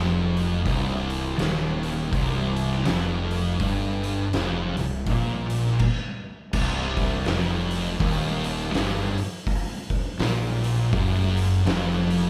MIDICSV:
0, 0, Header, 1, 4, 480
1, 0, Start_track
1, 0, Key_signature, -3, "minor"
1, 0, Tempo, 734394
1, 425, Time_signature, 4, 2, 24, 8
1, 8038, End_track
2, 0, Start_track
2, 0, Title_t, "Distorted electric guitar"
2, 0, Program_c, 0, 30
2, 0, Note_on_c, 0, 41, 102
2, 418, Note_off_c, 0, 41, 0
2, 421, Note_on_c, 0, 36, 103
2, 898, Note_off_c, 0, 36, 0
2, 903, Note_on_c, 0, 39, 107
2, 1379, Note_off_c, 0, 39, 0
2, 1392, Note_on_c, 0, 36, 111
2, 1864, Note_off_c, 0, 36, 0
2, 1873, Note_on_c, 0, 41, 108
2, 2345, Note_off_c, 0, 41, 0
2, 2360, Note_on_c, 0, 43, 102
2, 2828, Note_off_c, 0, 43, 0
2, 2840, Note_on_c, 0, 41, 109
2, 3111, Note_off_c, 0, 41, 0
2, 3118, Note_on_c, 0, 36, 71
2, 3271, Note_off_c, 0, 36, 0
2, 3317, Note_on_c, 0, 46, 110
2, 3786, Note_off_c, 0, 46, 0
2, 4272, Note_on_c, 0, 36, 99
2, 4743, Note_off_c, 0, 36, 0
2, 4746, Note_on_c, 0, 41, 105
2, 5220, Note_off_c, 0, 41, 0
2, 5224, Note_on_c, 0, 39, 109
2, 5698, Note_off_c, 0, 39, 0
2, 5702, Note_on_c, 0, 43, 114
2, 5980, Note_off_c, 0, 43, 0
2, 6662, Note_on_c, 0, 46, 103
2, 7135, Note_off_c, 0, 46, 0
2, 7142, Note_on_c, 0, 42, 111
2, 7614, Note_off_c, 0, 42, 0
2, 7617, Note_on_c, 0, 41, 114
2, 8038, Note_off_c, 0, 41, 0
2, 8038, End_track
3, 0, Start_track
3, 0, Title_t, "Fingered electric bass"
3, 0, Program_c, 1, 33
3, 0, Note_on_c, 1, 29, 90
3, 403, Note_off_c, 1, 29, 0
3, 431, Note_on_c, 1, 24, 86
3, 883, Note_off_c, 1, 24, 0
3, 915, Note_on_c, 1, 27, 103
3, 1365, Note_off_c, 1, 27, 0
3, 1393, Note_on_c, 1, 24, 96
3, 1845, Note_off_c, 1, 24, 0
3, 1875, Note_on_c, 1, 29, 91
3, 2326, Note_off_c, 1, 29, 0
3, 2354, Note_on_c, 1, 31, 86
3, 2805, Note_off_c, 1, 31, 0
3, 2840, Note_on_c, 1, 29, 86
3, 3100, Note_off_c, 1, 29, 0
3, 3121, Note_on_c, 1, 24, 77
3, 3298, Note_off_c, 1, 24, 0
3, 3314, Note_on_c, 1, 34, 99
3, 3765, Note_off_c, 1, 34, 0
3, 4274, Note_on_c, 1, 24, 83
3, 4724, Note_off_c, 1, 24, 0
3, 4753, Note_on_c, 1, 29, 97
3, 5203, Note_off_c, 1, 29, 0
3, 5233, Note_on_c, 1, 27, 99
3, 5682, Note_off_c, 1, 27, 0
3, 5708, Note_on_c, 1, 31, 81
3, 5972, Note_off_c, 1, 31, 0
3, 6666, Note_on_c, 1, 34, 93
3, 7117, Note_off_c, 1, 34, 0
3, 7145, Note_on_c, 1, 30, 98
3, 7596, Note_off_c, 1, 30, 0
3, 7616, Note_on_c, 1, 29, 89
3, 8038, Note_off_c, 1, 29, 0
3, 8038, End_track
4, 0, Start_track
4, 0, Title_t, "Drums"
4, 240, Note_on_c, 9, 46, 55
4, 306, Note_off_c, 9, 46, 0
4, 429, Note_on_c, 9, 36, 109
4, 432, Note_on_c, 9, 46, 71
4, 495, Note_off_c, 9, 36, 0
4, 498, Note_off_c, 9, 46, 0
4, 719, Note_on_c, 9, 46, 59
4, 784, Note_off_c, 9, 46, 0
4, 910, Note_on_c, 9, 46, 69
4, 916, Note_on_c, 9, 38, 113
4, 975, Note_off_c, 9, 46, 0
4, 981, Note_off_c, 9, 38, 0
4, 1197, Note_on_c, 9, 46, 58
4, 1262, Note_off_c, 9, 46, 0
4, 1390, Note_on_c, 9, 36, 112
4, 1392, Note_on_c, 9, 46, 81
4, 1456, Note_off_c, 9, 36, 0
4, 1457, Note_off_c, 9, 46, 0
4, 1676, Note_on_c, 9, 46, 59
4, 1742, Note_off_c, 9, 46, 0
4, 1780, Note_on_c, 9, 38, 32
4, 1845, Note_off_c, 9, 38, 0
4, 1866, Note_on_c, 9, 46, 84
4, 1872, Note_on_c, 9, 38, 112
4, 1931, Note_off_c, 9, 46, 0
4, 1937, Note_off_c, 9, 38, 0
4, 2162, Note_on_c, 9, 46, 65
4, 2228, Note_off_c, 9, 46, 0
4, 2352, Note_on_c, 9, 46, 83
4, 2353, Note_on_c, 9, 36, 102
4, 2417, Note_off_c, 9, 46, 0
4, 2418, Note_off_c, 9, 36, 0
4, 2638, Note_on_c, 9, 46, 57
4, 2703, Note_off_c, 9, 46, 0
4, 2832, Note_on_c, 9, 46, 81
4, 2837, Note_on_c, 9, 38, 114
4, 2897, Note_off_c, 9, 46, 0
4, 2903, Note_off_c, 9, 38, 0
4, 3117, Note_on_c, 9, 46, 61
4, 3182, Note_off_c, 9, 46, 0
4, 3311, Note_on_c, 9, 46, 81
4, 3312, Note_on_c, 9, 36, 110
4, 3376, Note_off_c, 9, 46, 0
4, 3377, Note_off_c, 9, 36, 0
4, 3593, Note_on_c, 9, 46, 63
4, 3659, Note_off_c, 9, 46, 0
4, 3701, Note_on_c, 9, 38, 32
4, 3766, Note_off_c, 9, 38, 0
4, 3786, Note_on_c, 9, 49, 93
4, 3791, Note_on_c, 9, 36, 110
4, 3851, Note_off_c, 9, 49, 0
4, 3857, Note_off_c, 9, 36, 0
4, 4267, Note_on_c, 9, 49, 127
4, 4271, Note_on_c, 9, 36, 115
4, 4333, Note_off_c, 9, 49, 0
4, 4336, Note_off_c, 9, 36, 0
4, 4552, Note_on_c, 9, 46, 56
4, 4556, Note_on_c, 9, 36, 93
4, 4618, Note_off_c, 9, 46, 0
4, 4622, Note_off_c, 9, 36, 0
4, 4742, Note_on_c, 9, 46, 81
4, 4747, Note_on_c, 9, 38, 113
4, 4807, Note_off_c, 9, 46, 0
4, 4813, Note_off_c, 9, 38, 0
4, 5036, Note_on_c, 9, 46, 64
4, 5102, Note_off_c, 9, 46, 0
4, 5231, Note_on_c, 9, 36, 120
4, 5232, Note_on_c, 9, 46, 80
4, 5296, Note_off_c, 9, 36, 0
4, 5297, Note_off_c, 9, 46, 0
4, 5517, Note_on_c, 9, 46, 59
4, 5582, Note_off_c, 9, 46, 0
4, 5715, Note_on_c, 9, 46, 86
4, 5721, Note_on_c, 9, 38, 115
4, 5781, Note_off_c, 9, 46, 0
4, 5787, Note_off_c, 9, 38, 0
4, 5998, Note_on_c, 9, 46, 65
4, 6064, Note_off_c, 9, 46, 0
4, 6188, Note_on_c, 9, 36, 116
4, 6192, Note_on_c, 9, 46, 94
4, 6253, Note_off_c, 9, 36, 0
4, 6258, Note_off_c, 9, 46, 0
4, 6472, Note_on_c, 9, 36, 88
4, 6472, Note_on_c, 9, 46, 63
4, 6537, Note_off_c, 9, 36, 0
4, 6538, Note_off_c, 9, 46, 0
4, 6663, Note_on_c, 9, 46, 92
4, 6669, Note_on_c, 9, 38, 113
4, 6728, Note_off_c, 9, 46, 0
4, 6734, Note_off_c, 9, 38, 0
4, 6952, Note_on_c, 9, 46, 62
4, 7017, Note_off_c, 9, 46, 0
4, 7144, Note_on_c, 9, 36, 127
4, 7144, Note_on_c, 9, 46, 89
4, 7209, Note_off_c, 9, 36, 0
4, 7210, Note_off_c, 9, 46, 0
4, 7430, Note_on_c, 9, 46, 61
4, 7495, Note_off_c, 9, 46, 0
4, 7624, Note_on_c, 9, 46, 84
4, 7630, Note_on_c, 9, 38, 123
4, 7690, Note_off_c, 9, 46, 0
4, 7696, Note_off_c, 9, 38, 0
4, 7911, Note_on_c, 9, 46, 62
4, 7976, Note_off_c, 9, 46, 0
4, 8038, End_track
0, 0, End_of_file